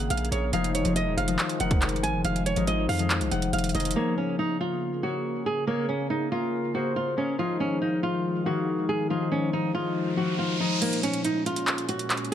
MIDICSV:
0, 0, Header, 1, 7, 480
1, 0, Start_track
1, 0, Tempo, 428571
1, 596, Time_signature, 4, 2, 24, 8
1, 13822, End_track
2, 0, Start_track
2, 0, Title_t, "Nylon-string guitar"
2, 0, Program_c, 0, 24
2, 116, Note_on_c, 0, 77, 78
2, 312, Note_off_c, 0, 77, 0
2, 356, Note_on_c, 0, 73, 71
2, 552, Note_off_c, 0, 73, 0
2, 597, Note_on_c, 0, 77, 81
2, 793, Note_off_c, 0, 77, 0
2, 835, Note_on_c, 0, 73, 81
2, 1032, Note_off_c, 0, 73, 0
2, 1073, Note_on_c, 0, 75, 80
2, 1271, Note_off_c, 0, 75, 0
2, 1315, Note_on_c, 0, 77, 83
2, 1766, Note_off_c, 0, 77, 0
2, 1797, Note_on_c, 0, 78, 83
2, 2247, Note_off_c, 0, 78, 0
2, 2276, Note_on_c, 0, 80, 86
2, 2473, Note_off_c, 0, 80, 0
2, 2516, Note_on_c, 0, 77, 87
2, 2713, Note_off_c, 0, 77, 0
2, 2754, Note_on_c, 0, 73, 78
2, 2951, Note_off_c, 0, 73, 0
2, 2997, Note_on_c, 0, 75, 94
2, 3193, Note_off_c, 0, 75, 0
2, 3236, Note_on_c, 0, 77, 93
2, 3687, Note_off_c, 0, 77, 0
2, 3713, Note_on_c, 0, 78, 83
2, 3911, Note_off_c, 0, 78, 0
2, 3955, Note_on_c, 0, 77, 82
2, 4152, Note_off_c, 0, 77, 0
2, 4198, Note_on_c, 0, 75, 76
2, 4394, Note_off_c, 0, 75, 0
2, 4435, Note_on_c, 0, 58, 78
2, 4632, Note_off_c, 0, 58, 0
2, 4678, Note_on_c, 0, 61, 77
2, 4873, Note_off_c, 0, 61, 0
2, 4916, Note_on_c, 0, 63, 82
2, 5112, Note_off_c, 0, 63, 0
2, 5159, Note_on_c, 0, 65, 84
2, 5608, Note_off_c, 0, 65, 0
2, 5636, Note_on_c, 0, 66, 74
2, 6087, Note_off_c, 0, 66, 0
2, 6117, Note_on_c, 0, 68, 82
2, 6313, Note_off_c, 0, 68, 0
2, 6355, Note_on_c, 0, 58, 79
2, 6552, Note_off_c, 0, 58, 0
2, 6593, Note_on_c, 0, 61, 76
2, 6791, Note_off_c, 0, 61, 0
2, 6833, Note_on_c, 0, 63, 76
2, 7031, Note_off_c, 0, 63, 0
2, 7077, Note_on_c, 0, 65, 87
2, 7527, Note_off_c, 0, 65, 0
2, 7556, Note_on_c, 0, 66, 77
2, 7753, Note_off_c, 0, 66, 0
2, 7797, Note_on_c, 0, 65, 76
2, 7993, Note_off_c, 0, 65, 0
2, 8038, Note_on_c, 0, 61, 69
2, 8234, Note_off_c, 0, 61, 0
2, 8278, Note_on_c, 0, 65, 78
2, 8474, Note_off_c, 0, 65, 0
2, 8515, Note_on_c, 0, 61, 77
2, 8712, Note_off_c, 0, 61, 0
2, 8754, Note_on_c, 0, 63, 78
2, 8951, Note_off_c, 0, 63, 0
2, 8995, Note_on_c, 0, 65, 82
2, 9446, Note_off_c, 0, 65, 0
2, 9477, Note_on_c, 0, 66, 76
2, 9928, Note_off_c, 0, 66, 0
2, 9956, Note_on_c, 0, 68, 79
2, 10152, Note_off_c, 0, 68, 0
2, 10196, Note_on_c, 0, 65, 83
2, 10392, Note_off_c, 0, 65, 0
2, 10434, Note_on_c, 0, 61, 75
2, 10631, Note_off_c, 0, 61, 0
2, 10677, Note_on_c, 0, 63, 90
2, 10873, Note_off_c, 0, 63, 0
2, 10916, Note_on_c, 0, 65, 94
2, 11367, Note_off_c, 0, 65, 0
2, 11394, Note_on_c, 0, 66, 82
2, 11591, Note_off_c, 0, 66, 0
2, 11635, Note_on_c, 0, 65, 83
2, 11832, Note_off_c, 0, 65, 0
2, 11877, Note_on_c, 0, 63, 73
2, 12073, Note_off_c, 0, 63, 0
2, 12114, Note_on_c, 0, 58, 81
2, 12312, Note_off_c, 0, 58, 0
2, 12357, Note_on_c, 0, 61, 84
2, 12553, Note_off_c, 0, 61, 0
2, 12595, Note_on_c, 0, 63, 80
2, 12792, Note_off_c, 0, 63, 0
2, 12837, Note_on_c, 0, 65, 88
2, 13287, Note_off_c, 0, 65, 0
2, 13315, Note_on_c, 0, 66, 79
2, 13766, Note_off_c, 0, 66, 0
2, 13822, End_track
3, 0, Start_track
3, 0, Title_t, "Harp"
3, 0, Program_c, 1, 46
3, 0, Note_on_c, 1, 58, 79
3, 0, Note_on_c, 1, 68, 72
3, 0, Note_on_c, 1, 73, 86
3, 342, Note_off_c, 1, 58, 0
3, 347, Note_on_c, 1, 58, 67
3, 350, Note_off_c, 1, 68, 0
3, 354, Note_on_c, 1, 68, 63
3, 357, Note_off_c, 1, 73, 0
3, 362, Note_on_c, 1, 73, 76
3, 556, Note_off_c, 1, 58, 0
3, 560, Note_off_c, 1, 68, 0
3, 564, Note_off_c, 1, 73, 0
3, 587, Note_on_c, 1, 53, 101
3, 595, Note_on_c, 1, 63, 95
3, 602, Note_on_c, 1, 68, 110
3, 903, Note_off_c, 1, 63, 0
3, 906, Note_off_c, 1, 68, 0
3, 934, Note_off_c, 1, 53, 0
3, 947, Note_on_c, 1, 53, 78
3, 955, Note_on_c, 1, 63, 72
3, 962, Note_on_c, 1, 68, 90
3, 1365, Note_off_c, 1, 63, 0
3, 1369, Note_off_c, 1, 68, 0
3, 1414, Note_off_c, 1, 53, 0
3, 1427, Note_on_c, 1, 53, 75
3, 1435, Note_on_c, 1, 63, 74
3, 1442, Note_on_c, 1, 65, 86
3, 1743, Note_off_c, 1, 63, 0
3, 1747, Note_off_c, 1, 65, 0
3, 1774, Note_off_c, 1, 53, 0
3, 1788, Note_on_c, 1, 53, 67
3, 1795, Note_on_c, 1, 63, 67
3, 1803, Note_on_c, 1, 70, 78
3, 2854, Note_off_c, 1, 53, 0
3, 2867, Note_on_c, 1, 53, 84
3, 2870, Note_off_c, 1, 63, 0
3, 2875, Note_on_c, 1, 63, 73
3, 2882, Note_on_c, 1, 68, 82
3, 3285, Note_off_c, 1, 63, 0
3, 3289, Note_off_c, 1, 68, 0
3, 3334, Note_off_c, 1, 53, 0
3, 3347, Note_on_c, 1, 53, 80
3, 3355, Note_on_c, 1, 63, 69
3, 3362, Note_on_c, 1, 68, 84
3, 4175, Note_off_c, 1, 53, 0
3, 4179, Note_off_c, 1, 70, 0
3, 4188, Note_on_c, 1, 53, 73
3, 4191, Note_off_c, 1, 63, 0
3, 4196, Note_on_c, 1, 63, 60
3, 4199, Note_off_c, 1, 68, 0
3, 4203, Note_on_c, 1, 68, 81
3, 4401, Note_off_c, 1, 63, 0
3, 4405, Note_off_c, 1, 68, 0
3, 4427, Note_on_c, 1, 58, 91
3, 4435, Note_on_c, 1, 68, 83
3, 4442, Note_on_c, 1, 73, 96
3, 4491, Note_off_c, 1, 53, 0
3, 5623, Note_off_c, 1, 58, 0
3, 5628, Note_on_c, 1, 58, 73
3, 5631, Note_off_c, 1, 68, 0
3, 5635, Note_on_c, 1, 68, 67
3, 5638, Note_off_c, 1, 73, 0
3, 5642, Note_on_c, 1, 73, 79
3, 6343, Note_off_c, 1, 58, 0
3, 6347, Note_on_c, 1, 58, 98
3, 6351, Note_off_c, 1, 68, 0
3, 6355, Note_on_c, 1, 68, 90
3, 6358, Note_off_c, 1, 73, 0
3, 6363, Note_on_c, 1, 73, 98
3, 7063, Note_off_c, 1, 58, 0
3, 7068, Note_on_c, 1, 58, 69
3, 7071, Note_off_c, 1, 68, 0
3, 7075, Note_on_c, 1, 68, 65
3, 7083, Note_on_c, 1, 70, 73
3, 7482, Note_off_c, 1, 58, 0
3, 7486, Note_off_c, 1, 68, 0
3, 7489, Note_off_c, 1, 70, 0
3, 7548, Note_on_c, 1, 58, 80
3, 7556, Note_on_c, 1, 68, 67
3, 7563, Note_on_c, 1, 72, 88
3, 7630, Note_off_c, 1, 73, 0
3, 7962, Note_off_c, 1, 58, 0
3, 7966, Note_off_c, 1, 68, 0
3, 7969, Note_off_c, 1, 72, 0
3, 8028, Note_on_c, 1, 58, 72
3, 8035, Note_on_c, 1, 68, 71
3, 8043, Note_on_c, 1, 73, 79
3, 8237, Note_off_c, 1, 58, 0
3, 8240, Note_off_c, 1, 68, 0
3, 8244, Note_off_c, 1, 73, 0
3, 8268, Note_on_c, 1, 53, 89
3, 8276, Note_on_c, 1, 63, 85
3, 8283, Note_on_c, 1, 68, 103
3, 9468, Note_on_c, 1, 51, 70
3, 9471, Note_off_c, 1, 63, 0
3, 9475, Note_on_c, 1, 63, 64
3, 9478, Note_off_c, 1, 68, 0
3, 9483, Note_on_c, 1, 68, 88
3, 9531, Note_off_c, 1, 53, 0
3, 10188, Note_on_c, 1, 53, 91
3, 10191, Note_off_c, 1, 63, 0
3, 10195, Note_on_c, 1, 63, 84
3, 10198, Note_off_c, 1, 68, 0
3, 10203, Note_on_c, 1, 68, 101
3, 10894, Note_off_c, 1, 53, 0
3, 10907, Note_on_c, 1, 53, 71
3, 10911, Note_off_c, 1, 63, 0
3, 10915, Note_on_c, 1, 63, 63
3, 10918, Note_off_c, 1, 68, 0
3, 10922, Note_on_c, 1, 68, 72
3, 11326, Note_off_c, 1, 63, 0
3, 11329, Note_off_c, 1, 68, 0
3, 11374, Note_off_c, 1, 53, 0
3, 11388, Note_on_c, 1, 53, 75
3, 11395, Note_on_c, 1, 63, 71
3, 11403, Note_on_c, 1, 65, 85
3, 11806, Note_off_c, 1, 63, 0
3, 11809, Note_off_c, 1, 65, 0
3, 11854, Note_off_c, 1, 53, 0
3, 11868, Note_on_c, 1, 53, 78
3, 11875, Note_on_c, 1, 63, 68
3, 11882, Note_on_c, 1, 68, 82
3, 12080, Note_off_c, 1, 63, 0
3, 12084, Note_off_c, 1, 68, 0
3, 12171, Note_off_c, 1, 51, 0
3, 12171, Note_off_c, 1, 53, 0
3, 13822, End_track
4, 0, Start_track
4, 0, Title_t, "Analog synth pad"
4, 0, Program_c, 2, 89
4, 0, Note_on_c, 2, 49, 83
4, 0, Note_on_c, 2, 58, 80
4, 0, Note_on_c, 2, 68, 89
4, 557, Note_off_c, 2, 49, 0
4, 557, Note_off_c, 2, 58, 0
4, 557, Note_off_c, 2, 68, 0
4, 595, Note_on_c, 2, 51, 84
4, 595, Note_on_c, 2, 53, 92
4, 595, Note_on_c, 2, 56, 74
4, 4397, Note_off_c, 2, 51, 0
4, 4397, Note_off_c, 2, 53, 0
4, 4397, Note_off_c, 2, 56, 0
4, 4435, Note_on_c, 2, 49, 78
4, 4435, Note_on_c, 2, 58, 73
4, 4435, Note_on_c, 2, 68, 90
4, 8237, Note_off_c, 2, 49, 0
4, 8237, Note_off_c, 2, 58, 0
4, 8237, Note_off_c, 2, 68, 0
4, 8276, Note_on_c, 2, 51, 85
4, 8276, Note_on_c, 2, 56, 75
4, 8276, Note_on_c, 2, 77, 93
4, 12077, Note_off_c, 2, 51, 0
4, 12077, Note_off_c, 2, 56, 0
4, 12077, Note_off_c, 2, 77, 0
4, 12115, Note_on_c, 2, 46, 82
4, 12115, Note_on_c, 2, 56, 76
4, 12115, Note_on_c, 2, 61, 91
4, 13822, Note_off_c, 2, 46, 0
4, 13822, Note_off_c, 2, 56, 0
4, 13822, Note_off_c, 2, 61, 0
4, 13822, End_track
5, 0, Start_track
5, 0, Title_t, "808-style bass"
5, 0, Program_c, 3, 38
5, 115, Note_on_c, 3, 34, 109
5, 346, Note_off_c, 3, 34, 0
5, 355, Note_on_c, 3, 34, 106
5, 586, Note_off_c, 3, 34, 0
5, 596, Note_on_c, 3, 29, 114
5, 941, Note_off_c, 3, 29, 0
5, 955, Note_on_c, 3, 29, 110
5, 1195, Note_on_c, 3, 27, 97
5, 1212, Note_off_c, 3, 29, 0
5, 1309, Note_off_c, 3, 27, 0
5, 1315, Note_on_c, 3, 29, 105
5, 1546, Note_off_c, 3, 29, 0
5, 1795, Note_on_c, 3, 29, 110
5, 2275, Note_on_c, 3, 32, 100
5, 2292, Note_off_c, 3, 29, 0
5, 2395, Note_on_c, 3, 29, 101
5, 2412, Note_off_c, 3, 32, 0
5, 2509, Note_off_c, 3, 29, 0
5, 2515, Note_on_c, 3, 29, 109
5, 2861, Note_off_c, 3, 29, 0
5, 2875, Note_on_c, 3, 32, 100
5, 3221, Note_off_c, 3, 32, 0
5, 3235, Note_on_c, 3, 41, 107
5, 3595, Note_on_c, 3, 36, 98
5, 3612, Note_off_c, 3, 41, 0
5, 3709, Note_off_c, 3, 36, 0
5, 3715, Note_on_c, 3, 29, 107
5, 3946, Note_off_c, 3, 29, 0
5, 3955, Note_on_c, 3, 29, 106
5, 4186, Note_off_c, 3, 29, 0
5, 4195, Note_on_c, 3, 29, 106
5, 4426, Note_off_c, 3, 29, 0
5, 13822, End_track
6, 0, Start_track
6, 0, Title_t, "Riser"
6, 0, Program_c, 4, 103
6, 10195, Note_on_c, 4, 60, 84
6, 12115, Note_off_c, 4, 60, 0
6, 13822, End_track
7, 0, Start_track
7, 0, Title_t, "Drums"
7, 115, Note_on_c, 9, 42, 83
7, 195, Note_off_c, 9, 42, 0
7, 195, Note_on_c, 9, 42, 65
7, 275, Note_off_c, 9, 42, 0
7, 275, Note_on_c, 9, 42, 48
7, 360, Note_off_c, 9, 42, 0
7, 360, Note_on_c, 9, 42, 86
7, 472, Note_off_c, 9, 42, 0
7, 594, Note_on_c, 9, 42, 90
7, 706, Note_off_c, 9, 42, 0
7, 721, Note_on_c, 9, 42, 62
7, 833, Note_off_c, 9, 42, 0
7, 837, Note_on_c, 9, 42, 82
7, 949, Note_off_c, 9, 42, 0
7, 951, Note_on_c, 9, 42, 64
7, 1063, Note_off_c, 9, 42, 0
7, 1074, Note_on_c, 9, 42, 70
7, 1186, Note_off_c, 9, 42, 0
7, 1318, Note_on_c, 9, 42, 60
7, 1430, Note_off_c, 9, 42, 0
7, 1432, Note_on_c, 9, 42, 75
7, 1544, Note_off_c, 9, 42, 0
7, 1554, Note_on_c, 9, 39, 115
7, 1557, Note_on_c, 9, 42, 77
7, 1666, Note_off_c, 9, 39, 0
7, 1669, Note_off_c, 9, 42, 0
7, 1674, Note_on_c, 9, 42, 67
7, 1786, Note_off_c, 9, 42, 0
7, 1792, Note_on_c, 9, 42, 80
7, 1904, Note_off_c, 9, 42, 0
7, 1913, Note_on_c, 9, 42, 70
7, 1915, Note_on_c, 9, 36, 102
7, 2025, Note_off_c, 9, 42, 0
7, 2027, Note_off_c, 9, 36, 0
7, 2035, Note_on_c, 9, 39, 95
7, 2035, Note_on_c, 9, 42, 83
7, 2115, Note_off_c, 9, 42, 0
7, 2115, Note_on_c, 9, 42, 64
7, 2147, Note_off_c, 9, 39, 0
7, 2195, Note_off_c, 9, 42, 0
7, 2195, Note_on_c, 9, 42, 49
7, 2280, Note_off_c, 9, 42, 0
7, 2280, Note_on_c, 9, 42, 85
7, 2392, Note_off_c, 9, 42, 0
7, 2515, Note_on_c, 9, 42, 89
7, 2627, Note_off_c, 9, 42, 0
7, 2641, Note_on_c, 9, 42, 59
7, 2753, Note_off_c, 9, 42, 0
7, 2758, Note_on_c, 9, 42, 84
7, 2870, Note_off_c, 9, 42, 0
7, 2871, Note_on_c, 9, 42, 61
7, 2983, Note_off_c, 9, 42, 0
7, 2995, Note_on_c, 9, 42, 69
7, 3107, Note_off_c, 9, 42, 0
7, 3239, Note_on_c, 9, 46, 82
7, 3351, Note_off_c, 9, 46, 0
7, 3352, Note_on_c, 9, 42, 75
7, 3464, Note_off_c, 9, 42, 0
7, 3474, Note_on_c, 9, 39, 111
7, 3477, Note_on_c, 9, 42, 75
7, 3586, Note_off_c, 9, 39, 0
7, 3589, Note_off_c, 9, 42, 0
7, 3595, Note_on_c, 9, 42, 67
7, 3707, Note_off_c, 9, 42, 0
7, 3712, Note_on_c, 9, 42, 80
7, 3824, Note_off_c, 9, 42, 0
7, 3833, Note_on_c, 9, 42, 68
7, 3945, Note_off_c, 9, 42, 0
7, 3955, Note_on_c, 9, 42, 68
7, 4015, Note_off_c, 9, 42, 0
7, 4015, Note_on_c, 9, 42, 69
7, 4075, Note_off_c, 9, 42, 0
7, 4075, Note_on_c, 9, 42, 69
7, 4135, Note_off_c, 9, 42, 0
7, 4135, Note_on_c, 9, 42, 67
7, 4195, Note_off_c, 9, 42, 0
7, 4195, Note_on_c, 9, 42, 54
7, 4255, Note_off_c, 9, 42, 0
7, 4255, Note_on_c, 9, 42, 66
7, 4315, Note_off_c, 9, 42, 0
7, 4315, Note_on_c, 9, 42, 76
7, 4375, Note_off_c, 9, 42, 0
7, 4375, Note_on_c, 9, 42, 88
7, 4487, Note_off_c, 9, 42, 0
7, 12115, Note_on_c, 9, 42, 85
7, 12115, Note_on_c, 9, 49, 98
7, 12227, Note_off_c, 9, 42, 0
7, 12227, Note_off_c, 9, 49, 0
7, 12241, Note_on_c, 9, 42, 58
7, 12353, Note_off_c, 9, 42, 0
7, 12357, Note_on_c, 9, 42, 81
7, 12469, Note_off_c, 9, 42, 0
7, 12471, Note_on_c, 9, 42, 60
7, 12583, Note_off_c, 9, 42, 0
7, 12594, Note_on_c, 9, 42, 67
7, 12706, Note_off_c, 9, 42, 0
7, 12838, Note_on_c, 9, 42, 60
7, 12950, Note_off_c, 9, 42, 0
7, 12951, Note_on_c, 9, 42, 73
7, 13063, Note_off_c, 9, 42, 0
7, 13074, Note_on_c, 9, 39, 111
7, 13077, Note_on_c, 9, 42, 75
7, 13186, Note_off_c, 9, 39, 0
7, 13189, Note_off_c, 9, 42, 0
7, 13195, Note_on_c, 9, 42, 67
7, 13307, Note_off_c, 9, 42, 0
7, 13312, Note_on_c, 9, 42, 77
7, 13424, Note_off_c, 9, 42, 0
7, 13433, Note_on_c, 9, 42, 67
7, 13545, Note_off_c, 9, 42, 0
7, 13555, Note_on_c, 9, 39, 89
7, 13555, Note_on_c, 9, 42, 80
7, 13635, Note_off_c, 9, 42, 0
7, 13635, Note_on_c, 9, 42, 62
7, 13667, Note_off_c, 9, 39, 0
7, 13715, Note_off_c, 9, 42, 0
7, 13715, Note_on_c, 9, 42, 46
7, 13822, Note_off_c, 9, 42, 0
7, 13822, End_track
0, 0, End_of_file